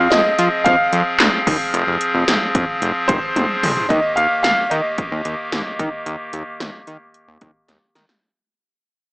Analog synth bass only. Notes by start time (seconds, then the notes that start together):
0.12 F2
0.39 F3
0.66 F2
0.93 F2
1.20 D2
1.47 D#2
1.74 F1
1.87 F1
2.14 F1
2.28 F1
2.55 F2
2.82 F1
3.09 F1
3.36 F1
3.63 G1
3.90 D#2
4.17 D#2
4.44 D#2
4.71 D#3
5.12 D#2
5.25 D#2
5.52 D#2
5.79 D#3
6.06 D#2
6.33 D#2
6.60 D#2
6.87 D#3
7.28 D#2
7.42 D#2
7.68 D#2
7.95 D#3